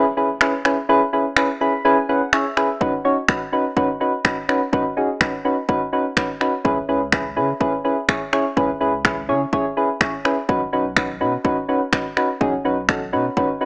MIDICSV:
0, 0, Header, 1, 5, 480
1, 0, Start_track
1, 0, Key_signature, 4, "minor"
1, 0, Tempo, 480000
1, 889, Time_signature, 4, 2, 24, 8
1, 13653, End_track
2, 0, Start_track
2, 0, Title_t, "Synth keys"
2, 0, Program_c, 0, 88
2, 167, Note_on_c, 0, 61, 84
2, 169, Note_on_c, 0, 64, 76
2, 170, Note_on_c, 0, 68, 76
2, 172, Note_on_c, 0, 71, 90
2, 289, Note_off_c, 0, 61, 0
2, 290, Note_off_c, 0, 64, 0
2, 291, Note_off_c, 0, 68, 0
2, 292, Note_off_c, 0, 71, 0
2, 408, Note_on_c, 0, 61, 86
2, 410, Note_on_c, 0, 64, 77
2, 411, Note_on_c, 0, 68, 76
2, 413, Note_on_c, 0, 71, 96
2, 530, Note_off_c, 0, 61, 0
2, 530, Note_off_c, 0, 64, 0
2, 531, Note_off_c, 0, 68, 0
2, 532, Note_off_c, 0, 71, 0
2, 648, Note_on_c, 0, 61, 86
2, 649, Note_on_c, 0, 64, 76
2, 651, Note_on_c, 0, 68, 76
2, 652, Note_on_c, 0, 71, 91
2, 770, Note_off_c, 0, 61, 0
2, 770, Note_off_c, 0, 64, 0
2, 771, Note_off_c, 0, 68, 0
2, 772, Note_off_c, 0, 71, 0
2, 888, Note_on_c, 0, 61, 111
2, 890, Note_on_c, 0, 64, 104
2, 891, Note_on_c, 0, 68, 102
2, 893, Note_on_c, 0, 71, 127
2, 1010, Note_off_c, 0, 61, 0
2, 1010, Note_off_c, 0, 64, 0
2, 1011, Note_off_c, 0, 68, 0
2, 1012, Note_off_c, 0, 71, 0
2, 1128, Note_on_c, 0, 61, 86
2, 1130, Note_on_c, 0, 64, 81
2, 1132, Note_on_c, 0, 68, 78
2, 1133, Note_on_c, 0, 71, 93
2, 1249, Note_off_c, 0, 61, 0
2, 1251, Note_off_c, 0, 64, 0
2, 1252, Note_off_c, 0, 68, 0
2, 1252, Note_off_c, 0, 71, 0
2, 1368, Note_on_c, 0, 61, 84
2, 1369, Note_on_c, 0, 64, 78
2, 1371, Note_on_c, 0, 68, 77
2, 1372, Note_on_c, 0, 71, 95
2, 1489, Note_off_c, 0, 61, 0
2, 1490, Note_off_c, 0, 64, 0
2, 1491, Note_off_c, 0, 68, 0
2, 1491, Note_off_c, 0, 71, 0
2, 1608, Note_on_c, 0, 61, 90
2, 1610, Note_on_c, 0, 64, 79
2, 1610, Note_on_c, 0, 83, 69
2, 1611, Note_on_c, 0, 68, 77
2, 1613, Note_on_c, 0, 71, 95
2, 1730, Note_off_c, 0, 61, 0
2, 1730, Note_off_c, 0, 64, 0
2, 1731, Note_off_c, 0, 68, 0
2, 1732, Note_off_c, 0, 71, 0
2, 1833, Note_off_c, 0, 83, 0
2, 1846, Note_on_c, 0, 61, 111
2, 1848, Note_on_c, 0, 64, 98
2, 1849, Note_on_c, 0, 80, 73
2, 1850, Note_on_c, 0, 68, 102
2, 1852, Note_on_c, 0, 71, 127
2, 1969, Note_off_c, 0, 61, 0
2, 1970, Note_off_c, 0, 64, 0
2, 1971, Note_off_c, 0, 68, 0
2, 1972, Note_off_c, 0, 71, 0
2, 2072, Note_off_c, 0, 80, 0
2, 2088, Note_on_c, 0, 61, 85
2, 2091, Note_on_c, 0, 64, 78
2, 2091, Note_on_c, 0, 78, 69
2, 2092, Note_on_c, 0, 68, 76
2, 2095, Note_on_c, 0, 71, 94
2, 2210, Note_off_c, 0, 61, 0
2, 2211, Note_off_c, 0, 64, 0
2, 2212, Note_off_c, 0, 68, 0
2, 2213, Note_off_c, 0, 71, 0
2, 2314, Note_off_c, 0, 78, 0
2, 2327, Note_on_c, 0, 61, 85
2, 2329, Note_on_c, 0, 64, 81
2, 2330, Note_on_c, 0, 68, 80
2, 2330, Note_on_c, 0, 76, 70
2, 2333, Note_on_c, 0, 73, 91
2, 2449, Note_off_c, 0, 61, 0
2, 2450, Note_off_c, 0, 64, 0
2, 2451, Note_off_c, 0, 68, 0
2, 2452, Note_off_c, 0, 73, 0
2, 2567, Note_on_c, 0, 61, 85
2, 2568, Note_on_c, 0, 64, 75
2, 2570, Note_on_c, 0, 68, 81
2, 2572, Note_on_c, 0, 71, 97
2, 2689, Note_off_c, 0, 61, 0
2, 2690, Note_off_c, 0, 64, 0
2, 2691, Note_off_c, 0, 68, 0
2, 2692, Note_off_c, 0, 71, 0
2, 2776, Note_off_c, 0, 76, 0
2, 2805, Note_on_c, 0, 61, 112
2, 2807, Note_on_c, 0, 63, 104
2, 2809, Note_on_c, 0, 66, 104
2, 2811, Note_on_c, 0, 71, 122
2, 2928, Note_off_c, 0, 61, 0
2, 2929, Note_off_c, 0, 63, 0
2, 2930, Note_off_c, 0, 66, 0
2, 2931, Note_off_c, 0, 71, 0
2, 3046, Note_on_c, 0, 61, 91
2, 3047, Note_on_c, 0, 63, 78
2, 3049, Note_on_c, 0, 66, 79
2, 3051, Note_on_c, 0, 73, 97
2, 3169, Note_off_c, 0, 61, 0
2, 3169, Note_off_c, 0, 63, 0
2, 3170, Note_off_c, 0, 66, 0
2, 3171, Note_off_c, 0, 73, 0
2, 3286, Note_on_c, 0, 61, 86
2, 3289, Note_on_c, 0, 63, 76
2, 3290, Note_on_c, 0, 66, 79
2, 3292, Note_on_c, 0, 71, 95
2, 3409, Note_off_c, 0, 61, 0
2, 3410, Note_off_c, 0, 63, 0
2, 3411, Note_off_c, 0, 66, 0
2, 3411, Note_off_c, 0, 71, 0
2, 3525, Note_on_c, 0, 61, 85
2, 3528, Note_on_c, 0, 63, 82
2, 3528, Note_on_c, 0, 66, 78
2, 3530, Note_on_c, 0, 71, 99
2, 3648, Note_off_c, 0, 61, 0
2, 3649, Note_off_c, 0, 63, 0
2, 3650, Note_off_c, 0, 66, 0
2, 3651, Note_off_c, 0, 71, 0
2, 3766, Note_on_c, 0, 61, 111
2, 3768, Note_on_c, 0, 63, 106
2, 3769, Note_on_c, 0, 66, 105
2, 3771, Note_on_c, 0, 71, 120
2, 3888, Note_off_c, 0, 61, 0
2, 3890, Note_off_c, 0, 63, 0
2, 3890, Note_off_c, 0, 66, 0
2, 3891, Note_off_c, 0, 71, 0
2, 4005, Note_on_c, 0, 61, 80
2, 4007, Note_on_c, 0, 63, 76
2, 4009, Note_on_c, 0, 66, 76
2, 4010, Note_on_c, 0, 71, 93
2, 4128, Note_off_c, 0, 61, 0
2, 4129, Note_off_c, 0, 63, 0
2, 4130, Note_off_c, 0, 66, 0
2, 4131, Note_off_c, 0, 71, 0
2, 4245, Note_on_c, 0, 61, 85
2, 4247, Note_on_c, 0, 63, 77
2, 4249, Note_on_c, 0, 66, 80
2, 4250, Note_on_c, 0, 71, 93
2, 4368, Note_off_c, 0, 61, 0
2, 4369, Note_off_c, 0, 63, 0
2, 4370, Note_off_c, 0, 66, 0
2, 4371, Note_off_c, 0, 71, 0
2, 4486, Note_on_c, 0, 61, 84
2, 4487, Note_on_c, 0, 63, 77
2, 4490, Note_on_c, 0, 66, 75
2, 4491, Note_on_c, 0, 71, 94
2, 4608, Note_off_c, 0, 61, 0
2, 4609, Note_off_c, 0, 63, 0
2, 4610, Note_off_c, 0, 66, 0
2, 4611, Note_off_c, 0, 71, 0
2, 4726, Note_on_c, 0, 61, 108
2, 4727, Note_on_c, 0, 63, 105
2, 4729, Note_on_c, 0, 66, 104
2, 4731, Note_on_c, 0, 71, 125
2, 4848, Note_off_c, 0, 61, 0
2, 4849, Note_off_c, 0, 63, 0
2, 4850, Note_off_c, 0, 66, 0
2, 4851, Note_off_c, 0, 71, 0
2, 4967, Note_on_c, 0, 61, 87
2, 4970, Note_on_c, 0, 63, 82
2, 4970, Note_on_c, 0, 66, 79
2, 4972, Note_on_c, 0, 68, 92
2, 5089, Note_off_c, 0, 61, 0
2, 5090, Note_off_c, 0, 63, 0
2, 5091, Note_off_c, 0, 66, 0
2, 5091, Note_off_c, 0, 68, 0
2, 5206, Note_on_c, 0, 61, 84
2, 5208, Note_on_c, 0, 63, 78
2, 5209, Note_on_c, 0, 66, 80
2, 5211, Note_on_c, 0, 71, 92
2, 5328, Note_off_c, 0, 61, 0
2, 5330, Note_off_c, 0, 63, 0
2, 5330, Note_off_c, 0, 66, 0
2, 5331, Note_off_c, 0, 71, 0
2, 5446, Note_on_c, 0, 61, 84
2, 5448, Note_on_c, 0, 63, 77
2, 5450, Note_on_c, 0, 66, 79
2, 5451, Note_on_c, 0, 71, 93
2, 5569, Note_off_c, 0, 61, 0
2, 5570, Note_off_c, 0, 63, 0
2, 5570, Note_off_c, 0, 66, 0
2, 5571, Note_off_c, 0, 71, 0
2, 5686, Note_on_c, 0, 61, 112
2, 5688, Note_on_c, 0, 63, 103
2, 5689, Note_on_c, 0, 66, 102
2, 5691, Note_on_c, 0, 71, 119
2, 5808, Note_off_c, 0, 61, 0
2, 5810, Note_off_c, 0, 63, 0
2, 5810, Note_off_c, 0, 66, 0
2, 5811, Note_off_c, 0, 71, 0
2, 5926, Note_on_c, 0, 61, 86
2, 5928, Note_on_c, 0, 63, 74
2, 5929, Note_on_c, 0, 66, 77
2, 5932, Note_on_c, 0, 71, 91
2, 6049, Note_off_c, 0, 61, 0
2, 6049, Note_off_c, 0, 63, 0
2, 6050, Note_off_c, 0, 66, 0
2, 6051, Note_off_c, 0, 71, 0
2, 6165, Note_on_c, 0, 61, 84
2, 6167, Note_on_c, 0, 63, 75
2, 6169, Note_on_c, 0, 66, 75
2, 6171, Note_on_c, 0, 71, 97
2, 6288, Note_off_c, 0, 61, 0
2, 6289, Note_off_c, 0, 63, 0
2, 6290, Note_off_c, 0, 66, 0
2, 6291, Note_off_c, 0, 71, 0
2, 6405, Note_on_c, 0, 61, 84
2, 6407, Note_on_c, 0, 63, 76
2, 6408, Note_on_c, 0, 66, 79
2, 6410, Note_on_c, 0, 71, 93
2, 6528, Note_off_c, 0, 61, 0
2, 6529, Note_off_c, 0, 63, 0
2, 6530, Note_off_c, 0, 66, 0
2, 6530, Note_off_c, 0, 71, 0
2, 6644, Note_on_c, 0, 61, 112
2, 6646, Note_on_c, 0, 64, 99
2, 6647, Note_on_c, 0, 68, 102
2, 6648, Note_on_c, 0, 71, 122
2, 6768, Note_off_c, 0, 61, 0
2, 6768, Note_off_c, 0, 64, 0
2, 6769, Note_off_c, 0, 68, 0
2, 6770, Note_off_c, 0, 71, 0
2, 6885, Note_on_c, 0, 61, 88
2, 6887, Note_on_c, 0, 64, 80
2, 6888, Note_on_c, 0, 68, 78
2, 6890, Note_on_c, 0, 71, 90
2, 7008, Note_off_c, 0, 61, 0
2, 7009, Note_off_c, 0, 64, 0
2, 7010, Note_off_c, 0, 68, 0
2, 7010, Note_off_c, 0, 71, 0
2, 7124, Note_on_c, 0, 61, 84
2, 7125, Note_on_c, 0, 64, 79
2, 7127, Note_on_c, 0, 68, 77
2, 7129, Note_on_c, 0, 71, 95
2, 7247, Note_off_c, 0, 61, 0
2, 7248, Note_off_c, 0, 64, 0
2, 7249, Note_off_c, 0, 68, 0
2, 7250, Note_off_c, 0, 71, 0
2, 7364, Note_on_c, 0, 61, 91
2, 7365, Note_on_c, 0, 64, 79
2, 7367, Note_on_c, 0, 68, 80
2, 7368, Note_on_c, 0, 71, 93
2, 7487, Note_off_c, 0, 61, 0
2, 7488, Note_off_c, 0, 64, 0
2, 7489, Note_off_c, 0, 68, 0
2, 7490, Note_off_c, 0, 71, 0
2, 7603, Note_on_c, 0, 61, 107
2, 7605, Note_on_c, 0, 64, 102
2, 7607, Note_on_c, 0, 68, 103
2, 7608, Note_on_c, 0, 71, 118
2, 7727, Note_off_c, 0, 61, 0
2, 7728, Note_off_c, 0, 64, 0
2, 7729, Note_off_c, 0, 68, 0
2, 7730, Note_off_c, 0, 71, 0
2, 7844, Note_on_c, 0, 61, 80
2, 7846, Note_on_c, 0, 64, 78
2, 7847, Note_on_c, 0, 68, 79
2, 7849, Note_on_c, 0, 71, 90
2, 7967, Note_off_c, 0, 61, 0
2, 7969, Note_off_c, 0, 64, 0
2, 7969, Note_off_c, 0, 68, 0
2, 7970, Note_off_c, 0, 71, 0
2, 8084, Note_on_c, 0, 61, 84
2, 8086, Note_on_c, 0, 64, 79
2, 8087, Note_on_c, 0, 68, 77
2, 8089, Note_on_c, 0, 73, 98
2, 8208, Note_off_c, 0, 61, 0
2, 8209, Note_off_c, 0, 64, 0
2, 8209, Note_off_c, 0, 68, 0
2, 8210, Note_off_c, 0, 73, 0
2, 8325, Note_on_c, 0, 61, 88
2, 8326, Note_on_c, 0, 64, 80
2, 8328, Note_on_c, 0, 68, 77
2, 8330, Note_on_c, 0, 73, 93
2, 8448, Note_off_c, 0, 61, 0
2, 8449, Note_off_c, 0, 64, 0
2, 8449, Note_off_c, 0, 68, 0
2, 8450, Note_off_c, 0, 73, 0
2, 8564, Note_on_c, 0, 61, 113
2, 8565, Note_on_c, 0, 64, 105
2, 8567, Note_on_c, 0, 68, 103
2, 8568, Note_on_c, 0, 71, 127
2, 8688, Note_off_c, 0, 61, 0
2, 8688, Note_off_c, 0, 64, 0
2, 8689, Note_off_c, 0, 68, 0
2, 8690, Note_off_c, 0, 71, 0
2, 8803, Note_on_c, 0, 61, 87
2, 8805, Note_on_c, 0, 64, 81
2, 8807, Note_on_c, 0, 68, 80
2, 8808, Note_on_c, 0, 71, 95
2, 8927, Note_off_c, 0, 61, 0
2, 8928, Note_off_c, 0, 64, 0
2, 8929, Note_off_c, 0, 68, 0
2, 8930, Note_off_c, 0, 71, 0
2, 9045, Note_on_c, 0, 61, 85
2, 9046, Note_on_c, 0, 64, 79
2, 9048, Note_on_c, 0, 68, 78
2, 9050, Note_on_c, 0, 71, 93
2, 9168, Note_off_c, 0, 61, 0
2, 9169, Note_off_c, 0, 64, 0
2, 9170, Note_off_c, 0, 68, 0
2, 9170, Note_off_c, 0, 71, 0
2, 9286, Note_on_c, 0, 61, 86
2, 9287, Note_on_c, 0, 64, 83
2, 9289, Note_on_c, 0, 68, 81
2, 9290, Note_on_c, 0, 73, 98
2, 9408, Note_off_c, 0, 61, 0
2, 9409, Note_off_c, 0, 64, 0
2, 9410, Note_off_c, 0, 68, 0
2, 9411, Note_off_c, 0, 73, 0
2, 9526, Note_on_c, 0, 61, 112
2, 9528, Note_on_c, 0, 64, 101
2, 9529, Note_on_c, 0, 68, 104
2, 9531, Note_on_c, 0, 73, 123
2, 9649, Note_off_c, 0, 61, 0
2, 9650, Note_off_c, 0, 64, 0
2, 9650, Note_off_c, 0, 68, 0
2, 9651, Note_off_c, 0, 73, 0
2, 9767, Note_on_c, 0, 61, 82
2, 9769, Note_on_c, 0, 64, 76
2, 9770, Note_on_c, 0, 68, 78
2, 9772, Note_on_c, 0, 71, 94
2, 9889, Note_off_c, 0, 61, 0
2, 9890, Note_off_c, 0, 64, 0
2, 9891, Note_off_c, 0, 68, 0
2, 9892, Note_off_c, 0, 71, 0
2, 10007, Note_on_c, 0, 61, 87
2, 10010, Note_on_c, 0, 64, 80
2, 10011, Note_on_c, 0, 68, 79
2, 10013, Note_on_c, 0, 73, 97
2, 10129, Note_off_c, 0, 61, 0
2, 10130, Note_off_c, 0, 64, 0
2, 10131, Note_off_c, 0, 68, 0
2, 10132, Note_off_c, 0, 73, 0
2, 10246, Note_on_c, 0, 61, 83
2, 10247, Note_on_c, 0, 64, 78
2, 10248, Note_on_c, 0, 68, 76
2, 10250, Note_on_c, 0, 71, 95
2, 10368, Note_off_c, 0, 61, 0
2, 10369, Note_off_c, 0, 64, 0
2, 10370, Note_off_c, 0, 68, 0
2, 10371, Note_off_c, 0, 71, 0
2, 10486, Note_on_c, 0, 61, 113
2, 10488, Note_on_c, 0, 63, 105
2, 10489, Note_on_c, 0, 66, 102
2, 10491, Note_on_c, 0, 71, 121
2, 10609, Note_off_c, 0, 61, 0
2, 10609, Note_off_c, 0, 63, 0
2, 10610, Note_off_c, 0, 66, 0
2, 10611, Note_off_c, 0, 71, 0
2, 10727, Note_on_c, 0, 61, 89
2, 10728, Note_on_c, 0, 63, 79
2, 10730, Note_on_c, 0, 66, 81
2, 10731, Note_on_c, 0, 71, 96
2, 10849, Note_off_c, 0, 61, 0
2, 10850, Note_off_c, 0, 63, 0
2, 10850, Note_off_c, 0, 66, 0
2, 10851, Note_off_c, 0, 71, 0
2, 10965, Note_on_c, 0, 61, 83
2, 10967, Note_on_c, 0, 63, 80
2, 10968, Note_on_c, 0, 66, 80
2, 10971, Note_on_c, 0, 71, 94
2, 11088, Note_off_c, 0, 61, 0
2, 11089, Note_off_c, 0, 63, 0
2, 11090, Note_off_c, 0, 66, 0
2, 11091, Note_off_c, 0, 71, 0
2, 11206, Note_on_c, 0, 61, 89
2, 11207, Note_on_c, 0, 63, 82
2, 11209, Note_on_c, 0, 66, 80
2, 11211, Note_on_c, 0, 71, 99
2, 11329, Note_off_c, 0, 61, 0
2, 11329, Note_off_c, 0, 63, 0
2, 11330, Note_off_c, 0, 66, 0
2, 11331, Note_off_c, 0, 71, 0
2, 11445, Note_on_c, 0, 61, 113
2, 11447, Note_on_c, 0, 63, 109
2, 11448, Note_on_c, 0, 66, 106
2, 11450, Note_on_c, 0, 71, 122
2, 11568, Note_off_c, 0, 61, 0
2, 11569, Note_off_c, 0, 63, 0
2, 11570, Note_off_c, 0, 66, 0
2, 11570, Note_off_c, 0, 71, 0
2, 11686, Note_on_c, 0, 61, 85
2, 11688, Note_on_c, 0, 63, 76
2, 11690, Note_on_c, 0, 66, 79
2, 11691, Note_on_c, 0, 71, 91
2, 11809, Note_off_c, 0, 61, 0
2, 11810, Note_off_c, 0, 63, 0
2, 11810, Note_off_c, 0, 66, 0
2, 11811, Note_off_c, 0, 71, 0
2, 11927, Note_on_c, 0, 61, 87
2, 11928, Note_on_c, 0, 63, 82
2, 11930, Note_on_c, 0, 66, 78
2, 11932, Note_on_c, 0, 71, 99
2, 12049, Note_off_c, 0, 61, 0
2, 12050, Note_off_c, 0, 63, 0
2, 12050, Note_off_c, 0, 66, 0
2, 12052, Note_off_c, 0, 71, 0
2, 12167, Note_on_c, 0, 61, 84
2, 12169, Note_on_c, 0, 63, 83
2, 12170, Note_on_c, 0, 66, 79
2, 12171, Note_on_c, 0, 71, 97
2, 12289, Note_off_c, 0, 61, 0
2, 12290, Note_off_c, 0, 63, 0
2, 12290, Note_off_c, 0, 66, 0
2, 12291, Note_off_c, 0, 71, 0
2, 12406, Note_on_c, 0, 61, 116
2, 12408, Note_on_c, 0, 63, 107
2, 12410, Note_on_c, 0, 66, 104
2, 12412, Note_on_c, 0, 68, 127
2, 12529, Note_off_c, 0, 61, 0
2, 12529, Note_off_c, 0, 63, 0
2, 12530, Note_off_c, 0, 66, 0
2, 12531, Note_off_c, 0, 68, 0
2, 12646, Note_on_c, 0, 61, 82
2, 12648, Note_on_c, 0, 63, 79
2, 12650, Note_on_c, 0, 66, 81
2, 12651, Note_on_c, 0, 71, 93
2, 12769, Note_off_c, 0, 61, 0
2, 12769, Note_off_c, 0, 63, 0
2, 12770, Note_off_c, 0, 66, 0
2, 12771, Note_off_c, 0, 71, 0
2, 12887, Note_on_c, 0, 61, 85
2, 12888, Note_on_c, 0, 63, 79
2, 12890, Note_on_c, 0, 66, 80
2, 12892, Note_on_c, 0, 69, 93
2, 13009, Note_off_c, 0, 61, 0
2, 13010, Note_off_c, 0, 63, 0
2, 13011, Note_off_c, 0, 66, 0
2, 13011, Note_off_c, 0, 69, 0
2, 13126, Note_on_c, 0, 61, 89
2, 13128, Note_on_c, 0, 63, 81
2, 13130, Note_on_c, 0, 66, 84
2, 13131, Note_on_c, 0, 71, 97
2, 13249, Note_off_c, 0, 61, 0
2, 13250, Note_off_c, 0, 63, 0
2, 13251, Note_off_c, 0, 66, 0
2, 13251, Note_off_c, 0, 71, 0
2, 13367, Note_on_c, 0, 61, 110
2, 13369, Note_on_c, 0, 63, 103
2, 13370, Note_on_c, 0, 66, 103
2, 13372, Note_on_c, 0, 71, 122
2, 13489, Note_off_c, 0, 61, 0
2, 13490, Note_off_c, 0, 63, 0
2, 13491, Note_off_c, 0, 66, 0
2, 13491, Note_off_c, 0, 71, 0
2, 13607, Note_on_c, 0, 61, 81
2, 13609, Note_on_c, 0, 63, 77
2, 13611, Note_on_c, 0, 66, 74
2, 13612, Note_on_c, 0, 71, 93
2, 13653, Note_off_c, 0, 61, 0
2, 13653, Note_off_c, 0, 63, 0
2, 13653, Note_off_c, 0, 66, 0
2, 13653, Note_off_c, 0, 71, 0
2, 13653, End_track
3, 0, Start_track
3, 0, Title_t, "Sub bass"
3, 0, Program_c, 1, 38
3, 6649, Note_on_c, 1, 37, 99
3, 6815, Note_off_c, 1, 37, 0
3, 6887, Note_on_c, 1, 37, 102
3, 7367, Note_on_c, 1, 49, 89
3, 7382, Note_off_c, 1, 37, 0
3, 7534, Note_off_c, 1, 49, 0
3, 8568, Note_on_c, 1, 37, 99
3, 8735, Note_off_c, 1, 37, 0
3, 8808, Note_on_c, 1, 37, 105
3, 9288, Note_on_c, 1, 49, 90
3, 9303, Note_off_c, 1, 37, 0
3, 9455, Note_off_c, 1, 49, 0
3, 10488, Note_on_c, 1, 35, 99
3, 10655, Note_off_c, 1, 35, 0
3, 10728, Note_on_c, 1, 35, 103
3, 11210, Note_on_c, 1, 47, 91
3, 11225, Note_off_c, 1, 35, 0
3, 11376, Note_off_c, 1, 47, 0
3, 12410, Note_on_c, 1, 35, 101
3, 12575, Note_off_c, 1, 35, 0
3, 12650, Note_on_c, 1, 35, 102
3, 13130, Note_on_c, 1, 47, 85
3, 13145, Note_off_c, 1, 35, 0
3, 13296, Note_off_c, 1, 47, 0
3, 13653, End_track
4, 0, Start_track
4, 0, Title_t, "Impact"
4, 0, Program_c, 2, 103
4, 0, Note_on_c, 2, 60, 78
4, 889, Note_off_c, 2, 60, 0
4, 13653, End_track
5, 0, Start_track
5, 0, Title_t, "Drums"
5, 407, Note_on_c, 9, 26, 107
5, 507, Note_off_c, 9, 26, 0
5, 649, Note_on_c, 9, 26, 58
5, 749, Note_off_c, 9, 26, 0
5, 1365, Note_on_c, 9, 26, 107
5, 1465, Note_off_c, 9, 26, 0
5, 2328, Note_on_c, 9, 26, 105
5, 2428, Note_off_c, 9, 26, 0
5, 2571, Note_on_c, 9, 26, 60
5, 2671, Note_off_c, 9, 26, 0
5, 2810, Note_on_c, 9, 36, 105
5, 2910, Note_off_c, 9, 36, 0
5, 3286, Note_on_c, 9, 26, 108
5, 3287, Note_on_c, 9, 36, 112
5, 3386, Note_off_c, 9, 26, 0
5, 3387, Note_off_c, 9, 36, 0
5, 3768, Note_on_c, 9, 36, 101
5, 3868, Note_off_c, 9, 36, 0
5, 4248, Note_on_c, 9, 36, 112
5, 4249, Note_on_c, 9, 26, 106
5, 4347, Note_off_c, 9, 36, 0
5, 4349, Note_off_c, 9, 26, 0
5, 4492, Note_on_c, 9, 26, 60
5, 4592, Note_off_c, 9, 26, 0
5, 4730, Note_on_c, 9, 36, 102
5, 4830, Note_off_c, 9, 36, 0
5, 5208, Note_on_c, 9, 26, 107
5, 5208, Note_on_c, 9, 36, 112
5, 5308, Note_off_c, 9, 26, 0
5, 5308, Note_off_c, 9, 36, 0
5, 5688, Note_on_c, 9, 36, 102
5, 5788, Note_off_c, 9, 36, 0
5, 6167, Note_on_c, 9, 36, 114
5, 6168, Note_on_c, 9, 26, 103
5, 6267, Note_off_c, 9, 36, 0
5, 6268, Note_off_c, 9, 26, 0
5, 6410, Note_on_c, 9, 26, 58
5, 6510, Note_off_c, 9, 26, 0
5, 6649, Note_on_c, 9, 36, 104
5, 6749, Note_off_c, 9, 36, 0
5, 7124, Note_on_c, 9, 26, 108
5, 7126, Note_on_c, 9, 36, 114
5, 7224, Note_off_c, 9, 26, 0
5, 7226, Note_off_c, 9, 36, 0
5, 7606, Note_on_c, 9, 36, 98
5, 7706, Note_off_c, 9, 36, 0
5, 8086, Note_on_c, 9, 36, 115
5, 8087, Note_on_c, 9, 26, 103
5, 8186, Note_off_c, 9, 36, 0
5, 8187, Note_off_c, 9, 26, 0
5, 8329, Note_on_c, 9, 26, 59
5, 8429, Note_off_c, 9, 26, 0
5, 8568, Note_on_c, 9, 36, 106
5, 8668, Note_off_c, 9, 36, 0
5, 9046, Note_on_c, 9, 26, 109
5, 9046, Note_on_c, 9, 36, 112
5, 9146, Note_off_c, 9, 26, 0
5, 9146, Note_off_c, 9, 36, 0
5, 9527, Note_on_c, 9, 36, 100
5, 9627, Note_off_c, 9, 36, 0
5, 10007, Note_on_c, 9, 36, 117
5, 10008, Note_on_c, 9, 26, 105
5, 10107, Note_off_c, 9, 36, 0
5, 10108, Note_off_c, 9, 26, 0
5, 10252, Note_on_c, 9, 26, 60
5, 10352, Note_off_c, 9, 26, 0
5, 10489, Note_on_c, 9, 36, 103
5, 10589, Note_off_c, 9, 36, 0
5, 10965, Note_on_c, 9, 26, 110
5, 10966, Note_on_c, 9, 36, 114
5, 11065, Note_off_c, 9, 26, 0
5, 11066, Note_off_c, 9, 36, 0
5, 11447, Note_on_c, 9, 36, 100
5, 11547, Note_off_c, 9, 36, 0
5, 11927, Note_on_c, 9, 36, 116
5, 11928, Note_on_c, 9, 26, 110
5, 12027, Note_off_c, 9, 36, 0
5, 12028, Note_off_c, 9, 26, 0
5, 12170, Note_on_c, 9, 26, 59
5, 12270, Note_off_c, 9, 26, 0
5, 12409, Note_on_c, 9, 36, 101
5, 12509, Note_off_c, 9, 36, 0
5, 12886, Note_on_c, 9, 26, 104
5, 12887, Note_on_c, 9, 36, 113
5, 12986, Note_off_c, 9, 26, 0
5, 12987, Note_off_c, 9, 36, 0
5, 13368, Note_on_c, 9, 36, 103
5, 13468, Note_off_c, 9, 36, 0
5, 13653, End_track
0, 0, End_of_file